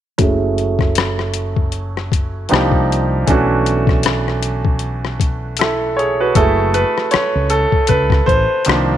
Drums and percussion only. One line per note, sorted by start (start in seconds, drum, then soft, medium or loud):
0.19 kick medium
0.19 closed hi-hat medium
0.58 closed hi-hat soft
0.79 kick medium
0.79 cross-stick soft
0.95 cross-stick medium
0.95 closed hi-hat medium
1.19 cross-stick soft
1.34 closed hi-hat medium
1.56 kick medium
1.72 closed hi-hat medium
1.97 cross-stick soft
2.12 kick medium
2.12 closed hi-hat medium
2.49 closed hi-hat medium
2.54 cross-stick medium
2.72 kick medium
2.92 closed hi-hat soft
3.27 kick medium
3.27 closed hi-hat medium
3.66 closed hi-hat medium
3.87 kick medium
3.87 cross-stick soft
4.03 cross-stick medium
4.03 closed hi-hat medium
4.28 cross-stick soft
4.42 closed hi-hat medium
4.65 kick medium
4.79 closed hi-hat medium
5.05 cross-stick soft
5.20 kick medium
5.20 closed hi-hat medium
5.57 closed hi-hat medium
5.61 cross-stick medium
5.99 closed hi-hat soft
6.35 kick loud
6.35 closed hi-hat medium
6.74 closed hi-hat medium
6.98 cross-stick soft
7.11 cross-stick medium
7.11 closed hi-hat medium
7.50 closed hi-hat medium
7.72 kick medium
7.87 kick medium
7.87 closed hi-hat medium
8.10 kick medium
8.10 cross-stick soft
8.28 kick medium
8.28 closed hi-hat medium
8.65 closed hi-hat medium
8.69 cross-stick loud